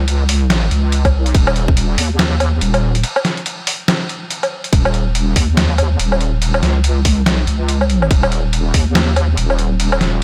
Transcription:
Already playing: wobble bass C#2
0.08 closed hi-hat, crash
0.29 open hi-hat
0.50 snare, closed hi-hat, crash
0.71 wobble bass C#2, closed hi-hat
0.92 closed hi-hat, crash
1.05 kick, closed hi-hat, low woodblock
1.15 wobble bass C2
1.26 closed hi-hat
1.35 wobble bass D#1, kick, closed hi-hat, crash
1.47 low woodblock
1.56 closed hi-hat
1.68 kick
1.77 closed hi-hat, crash
1.98 wobble bass D#2, open hi-hat
2.19 snare, closed hi-hat, crash
2.40 closed hi-hat, low woodblock
2.61 wobble bass D#1, closed hi-hat, crash
2.74 closed hi-hat, low woodblock
2.95 closed hi-hat
3.04 closed hi-hat, crash
3.16 low woodblock
3.25 snare, closed hi-hat
3.37 closed hi-hat
3.46 closed hi-hat, crash
3.67 open hi-hat
3.88 snare, closed hi-hat, crash
4.09 closed hi-hat
4.30 closed hi-hat, crash
4.43 closed hi-hat, low woodblock
4.64 closed hi-hat
4.73 wobble bass D#1, kick, closed hi-hat, crash
4.85 low woodblock
4.94 closed hi-hat
5.15 closed hi-hat, crash
5.36 wobble bass D#2, kick, open hi-hat
5.57 snare, closed hi-hat, crash
5.78 closed hi-hat, low woodblock
5.99 wobble bass D#1, closed hi-hat, crash
6.12 low woodblock
6.21 closed hi-hat
6.42 closed hi-hat, crash
6.54 low woodblock
6.63 wobble bass C#2, snare, closed hi-hat
6.84 closed hi-hat, crash
7.05 kick, open hi-hat
7.22 wobble bass C2
7.26 snare, closed hi-hat, crash
7.47 wobble bass C#2, closed hi-hat
7.69 closed hi-hat, crash
7.81 low woodblock
7.90 closed hi-hat
8.02 low woodblock
8.11 wobble bass D#1, kick, closed hi-hat, crash
8.23 low woodblock
8.32 closed hi-hat
8.53 closed hi-hat, crash
8.74 wobble bass D#2, kick, open hi-hat
8.95 snare, closed hi-hat, crash
9.16 closed hi-hat, low woodblock
9.37 wobble bass D#1, closed hi-hat, crash
9.50 low woodblock
9.59 closed hi-hat
9.80 closed hi-hat, crash
9.92 low woodblock
10.01 wobble bass D#1, snare, closed hi-hat

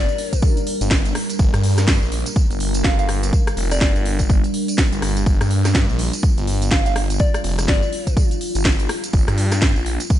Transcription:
Already playing: ambient pad G3 D4 A#4, synth bell D5
0.09 tambourine
0.18 open hi-hat
0.33 kick, closed hi-hat, tambourine
0.42 kick, tambourine
0.57 closed hi-hat, tambourine
0.67 open hi-hat
0.81 detuned saw bass G1, closed hi-hat, tambourine
0.91 kick, snare, tambourine
1.05 closed hi-hat, tambourine
1.15 cross-stick, open hi-hat
1.30 closed hi-hat, tambourine
1.39 detuned saw bass G1, kick, tambourine
1.54 detuned saw bass G2, cross-stick, closed hi-hat, tambourine
1.63 open hi-hat
1.77 cross-stick, snare, closed hi-hat, tambourine
1.88 kick, snare, tambourine
2.02 detuned saw bass A#1, tambourine
2.12 open hi-hat
2.26 closed hi-hat, tambourine
2.36 kick, tambourine
2.50 detuned saw bass G1, closed hi-hat, tambourine
2.60 open hi-hat
2.74 closed hi-hat, tambourine
2.84 detuned saw bass G1, synth bell F5, kick, snare
2.99 synth bell F5, closed hi-hat, tambourine
3.09 cross-stick, open hi-hat
3.23 closed hi-hat, tambourine
3.33 kick, tambourine
3.47 cross-stick, closed hi-hat, tambourine
3.57 detuned saw bass F1, open hi-hat
3.71 synth bell D5, cross-stick, closed hi-hat, tambourine
3.81 detuned saw bass G1, synth bell D5, kick, snare
3.96 detuned saw bass G1, closed hi-hat, tambourine
4.05 open hi-hat
4.19 kick, closed hi-hat, tambourine
4.30 kick, tambourine
4.44 closed hi-hat, tambourine
4.54 open hi-hat
4.68 closed hi-hat, tambourine
4.78 kick, snare, tambourine
4.92 detuned saw bass G1, closed hi-hat, tambourine
5.02 detuned saw bass G1, cross-stick, open hi-hat
5.17 closed hi-hat, tambourine
5.26 detuned saw bass G1, ambient pad F4, kick, tambourine
5.41 detuned saw bass G2, cross-stick, closed hi-hat, tambourine
5.51 open hi-hat
5.65 cross-stick, snare, closed hi-hat, tambourine
5.75 kick, snare, tambourine
5.89 detuned saw bass A#1, tambourine
5.99 open hi-hat
6.13 closed hi-hat, tambourine
6.23 kick, tambourine
6.38 detuned saw bass G1, closed hi-hat, tambourine
6.47 open hi-hat
6.62 closed hi-hat, tambourine
6.71 detuned saw bass G1, synth bell F5, kick, snare, tambourine
6.86 synth bell F5, closed hi-hat, tambourine
6.96 cross-stick, open hi-hat
7.10 closed hi-hat, tambourine
7.19 synth bell D5, kick, tambourine
7.34 synth bell D5, cross-stick, closed hi-hat, tambourine
7.44 detuned saw bass F1, open hi-hat
7.58 cross-stick, closed hi-hat, tambourine
7.68 detuned saw bass G1, synth bell D5, kick, snare, tambourine
7.83 tambourine
7.93 open hi-hat
8.07 kick, closed hi-hat, tambourine
8.17 kick, tambourine
8.31 closed hi-hat, tambourine
8.41 open hi-hat
8.55 detuned saw bass G1, closed hi-hat, tambourine
8.65 kick, snare
8.80 closed hi-hat, tambourine
8.89 cross-stick, open hi-hat
9.04 closed hi-hat, tambourine
9.13 detuned saw bass G1, kick, tambourine
9.28 detuned saw bass G2, cross-stick, closed hi-hat, tambourine
9.38 open hi-hat
9.52 cross-stick, snare, closed hi-hat, tambourine
9.62 kick, snare, tambourine
9.76 detuned saw bass A#1, tambourine
9.86 open hi-hat
10.00 closed hi-hat, tambourine
10.10 kick, tambourine

